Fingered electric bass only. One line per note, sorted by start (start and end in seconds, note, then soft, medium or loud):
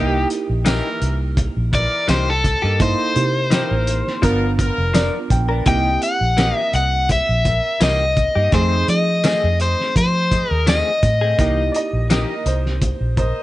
0.00 0.24 C2 loud
0.50 0.80 A#1 medium
1.02 1.48 C2 medium
1.57 1.87 A#1 medium
2.09 2.55 C2 loud
2.64 2.94 G2 loud
3.16 3.63 C3 medium
3.71 4.01 A1 medium
4.23 4.70 G1 loud
4.78 5.08 F1 medium
5.30 5.61 A#1 loud
5.66 5.96 C2 medium
6.21 6.51 A#1 medium
6.73 7.20 C2 medium
7.29 7.59 A#1 medium
7.81 8.27 C2 medium
8.36 8.50 G2 medium
8.52 8.83 F2 loud
8.88 9.35 F3 medium
9.44 9.74 F2 medium
9.96 10.42 F3 medium
10.51 10.81 D#2 medium
11.03 11.33 A2 medium
11.39 11.69 C2 medium
11.93 12.24 A#1 medium
12.46 12.92 C2 medium
13.01 13.31 A#1 medium